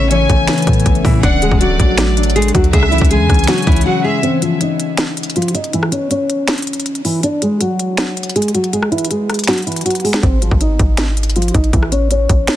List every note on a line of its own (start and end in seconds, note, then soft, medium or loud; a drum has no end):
0.00 0.27 A1 loud
0.00 1.03 C#3 medium
0.00 1.22 E3 medium
0.00 1.22 B3 medium
0.00 1.22 C#4 medium
0.00 2.70 A4 medium
0.11 0.85 E3 medium
0.11 1.01 C#4 medium
0.11 1.01 C#5 medium
0.11 0.82 G#5 loud
0.11 closed hi-hat medium
0.29 0.48 A1 loud
0.29 0.67 A3 medium
0.29 kick loud
0.29 closed hi-hat medium
0.47 3.59 B3 loud
0.47 finger snap loud
0.47 snare loud
0.47 closed hi-hat soft
0.53 closed hi-hat medium
0.58 closed hi-hat medium
0.62 closed hi-hat medium
0.67 0.85 A2 loud
0.67 1.60 A3 medium
0.67 kick loud
0.67 closed hi-hat medium
0.73 closed hi-hat medium
0.80 closed hi-hat medium
0.86 1.04 A1 loud
0.86 1.10 E3 medium
0.86 kick loud
0.86 closed hi-hat medium
0.95 closed hi-hat soft
1.05 1.23 A2 loud
1.05 1.28 C#3 medium
1.05 1.22 E3 medium
1.05 1.22 E4 medium
1.05 kick loud
1.05 open hi-hat medium
1.23 1.50 D1 loud
1.23 2.78 D3 medium
1.23 2.72 F#3 medium
1.23 2.72 A3 medium
1.23 1.40 D4 loud
1.23 2.72 D4 medium
1.23 1.41 D5 medium
1.23 1.59 F#5 loud
1.23 kick loud
1.23 closed hi-hat medium
1.42 2.53 F#3 medium
1.42 1.60 G#3 medium
1.42 1.59 G#4 medium
1.42 closed hi-hat medium
1.51 1.78 D1 loud
1.51 kick medium
1.61 2.32 F#3 medium
1.61 2.35 A3 medium
1.61 2.32 F#4 medium
1.61 2.32 D5 medium
1.61 closed hi-hat medium
1.80 2.52 A1 loud
1.80 2.17 D4 medium
1.80 kick medium
1.80 closed hi-hat medium
1.98 2.79 D5 loud
1.98 finger snap loud
1.98 snare loud
1.98 closed hi-hat medium
2.17 2.79 D4 medium
2.17 closed hi-hat medium
2.23 closed hi-hat medium
2.30 closed hi-hat medium
2.36 2.53 G#3 medium
2.36 3.17 A3 medium
2.36 2.53 G#4 medium
2.36 closed hi-hat medium
2.42 closed hi-hat medium
2.48 closed hi-hat medium
2.54 2.73 D2 loud
2.54 2.78 F#3 medium
2.54 2.72 F#3 medium
2.54 2.72 F#4 medium
2.54 kick loud
2.54 closed hi-hat medium
2.64 closed hi-hat soft
2.73 3.00 C#2 loud
2.73 4.28 C#3 loud
2.73 4.22 E3 medium
2.73 4.22 G#3 medium
2.73 2.91 G#3 medium
2.73 4.22 C#4 medium
2.73 2.90 G#4 loud
2.73 4.22 G#4 medium
2.73 3.08 E5 loud
2.73 kick loud
2.73 closed hi-hat medium
2.83 cross-stick medium
2.91 4.04 E3 medium
2.91 3.09 E3 medium
2.91 3.09 E4 medium
2.91 closed hi-hat soft
2.98 3.22 C#2 loud
2.98 kick medium
2.98 closed hi-hat medium
3.05 closed hi-hat medium
3.11 3.85 G#3 medium
3.11 3.46 G#3 medium
3.11 3.46 G#4 medium
3.11 3.82 G#5 medium
3.11 closed hi-hat medium
3.20 3.29 E2 loud
3.30 3.48 C#2 loud
3.30 3.67 C#4 medium
3.30 kick medium
3.30 cross-stick medium
3.30 closed hi-hat soft
3.34 closed hi-hat medium
3.39 closed hi-hat medium
3.44 finger snap loud
3.44 closed hi-hat medium
3.48 3.66 F#3 medium
3.48 3.65 F#4 medium
3.48 5.40 C#5 loud
3.48 snare loud
3.48 closed hi-hat medium
3.53 closed hi-hat medium
3.58 closed hi-hat medium
3.62 closed hi-hat soft
3.67 3.85 C#2 loud
3.67 3.84 E3 medium
3.67 6.57 C#4 medium
3.67 3.84 E4 loud
3.67 kick loud
3.67 closed hi-hat soft
3.72 closed hi-hat medium
3.76 closed hi-hat medium
3.81 closed hi-hat medium
3.86 4.03 F#3 medium
3.86 4.28 G#3 medium
3.86 4.03 F#4 medium
3.86 4.04 F#5 medium
4.04 4.28 E3 medium
4.04 4.22 G#3 medium
4.04 4.22 G#4 medium
4.04 4.22 E5 medium
4.23 4.40 C4 loud
4.23 4.41 C5 medium
4.23 closed hi-hat medium
4.42 4.60 F3 medium
4.42 4.59 F4 medium
4.42 closed hi-hat medium
4.61 5.32 D#4 medium
4.61 5.33 D#5 medium
4.61 closed hi-hat medium
4.80 closed hi-hat medium
4.97 finger snap medium
4.97 snare loud
4.97 closed hi-hat medium
5.17 closed hi-hat medium
5.23 closed hi-hat medium
5.30 closed hi-hat medium
5.36 5.54 F3 medium
5.36 5.53 F4 medium
5.36 closed hi-hat medium
5.42 closed hi-hat medium
5.48 closed hi-hat medium
5.54 5.71 D#4 medium
5.54 5.72 D#5 medium
5.54 closed hi-hat medium
5.64 closed hi-hat soft
5.73 5.91 E3 medium
5.73 5.91 E4 loud
5.73 closed hi-hat medium
5.83 cross-stick medium
5.91 6.09 C#4 medium
5.91 6.09 C#5 medium
5.91 closed hi-hat medium
6.11 7.01 C#4 medium
6.11 7.01 C#5 medium
6.11 closed hi-hat medium
6.30 closed hi-hat medium
6.48 finger snap medium
6.48 snare loud
6.48 closed hi-hat soft
6.53 closed hi-hat medium
6.58 closed hi-hat medium
6.62 closed hi-hat medium
6.67 closed hi-hat medium
6.73 closed hi-hat medium
6.80 closed hi-hat medium
6.86 closed hi-hat medium
6.95 closed hi-hat soft
7.05 7.22 E3 medium
7.05 7.22 E4 medium
7.05 open hi-hat medium
7.23 7.40 D4 loud
7.23 7.41 D5 medium
7.23 closed hi-hat medium
7.42 7.60 G#3 medium
7.42 7.59 G#4 medium
7.42 closed hi-hat medium
7.61 8.32 F#3 medium
7.61 8.32 F#4 medium
7.61 closed hi-hat medium
7.79 closed hi-hat medium
7.97 finger snap loud
7.97 snare loud
7.97 closed hi-hat medium
8.17 closed hi-hat medium
8.23 closed hi-hat medium
8.29 closed hi-hat medium
8.36 8.53 G#3 medium
8.36 8.53 G#4 medium
8.36 closed hi-hat medium
8.42 closed hi-hat medium
8.48 closed hi-hat medium
8.54 8.72 F#3 medium
8.54 8.72 F#4 medium
8.54 closed hi-hat medium
8.64 closed hi-hat soft
8.73 8.91 G#3 medium
8.73 8.90 G#4 loud
8.73 closed hi-hat medium
8.83 cross-stick medium
8.92 9.09 E3 medium
8.92 9.09 E4 medium
8.92 closed hi-hat soft
8.98 closed hi-hat medium
9.05 closed hi-hat medium
9.11 9.46 G#3 medium
9.11 9.46 G#4 medium
9.11 closed hi-hat medium
9.30 cross-stick medium
9.30 closed hi-hat soft
9.34 closed hi-hat medium
9.39 closed hi-hat medium
9.44 finger snap loud
9.44 closed hi-hat medium
9.48 9.66 F#3 medium
9.48 9.65 F#4 medium
9.48 snare loud
9.48 closed hi-hat medium
9.53 closed hi-hat medium
9.58 closed hi-hat medium
9.62 closed hi-hat soft
9.67 9.84 E3 medium
9.67 9.84 E4 medium
9.67 closed hi-hat soft
9.72 closed hi-hat medium
9.76 closed hi-hat medium
9.81 closed hi-hat medium
9.86 10.03 F#3 medium
9.86 10.03 F#4 medium
9.86 closed hi-hat medium
9.90 closed hi-hat medium
9.95 closed hi-hat medium
10.00 closed hi-hat soft
10.04 10.22 G#3 medium
10.04 10.21 G#4 medium
10.04 open hi-hat medium
10.13 finger snap medium
10.13 snare loud
10.23 10.50 G#1 loud
10.23 10.40 C4 loud
10.23 10.40 C5 medium
10.23 kick loud
10.23 closed hi-hat medium
10.42 10.59 F3 medium
10.42 10.59 F4 medium
10.42 closed hi-hat medium
10.51 10.78 G#1 loud
10.51 kick medium
10.61 11.32 D#4 medium
10.61 11.32 D#5 medium
10.61 closed hi-hat medium
10.79 11.52 G#1 loud
10.79 kick medium
10.79 closed hi-hat medium
10.97 finger snap medium
10.97 snare loud
10.97 closed hi-hat medium
11.17 closed hi-hat medium
11.23 closed hi-hat medium
11.30 closed hi-hat medium
11.36 11.53 F3 medium
11.36 11.53 F4 medium
11.36 closed hi-hat medium
11.42 closed hi-hat medium
11.48 closed hi-hat medium
11.54 11.73 G#1 loud
11.54 11.71 D#4 medium
11.54 11.72 D#5 medium
11.54 kick loud
11.54 closed hi-hat medium
11.64 closed hi-hat soft
11.73 12.27 A1 loud
11.73 11.91 E3 medium
11.73 11.91 E4 loud
11.73 kick loud
11.73 closed hi-hat medium
11.83 cross-stick medium
11.92 12.09 C#4 medium
11.92 12.09 C#5 medium
11.92 closed hi-hat medium
12.11 12.56 C#4 medium
12.11 12.56 C#5 medium
12.11 closed hi-hat medium
12.29 12.48 A1 loud
12.29 kick medium
12.29 closed hi-hat medium
12.47 finger snap loud
12.47 snare loud
12.47 closed hi-hat soft
12.53 closed hi-hat medium